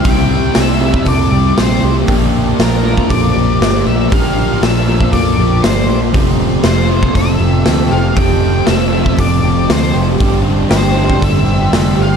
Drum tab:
HH |o---o---o---o---|o---o---o---o---|o---o---o---o---|o---o---o---o---|
SD |----o-------o---|----o-------o---|----o-------o---|----o-------o---|
BD |o------oo-------|o------oo-------|o------oo-------|o------oo-------|

HH |o---o---o---o---|o---o---o---o---|
SD |----o-------o---|----o-------o---|
BD |o------oo-------|o------oo-------|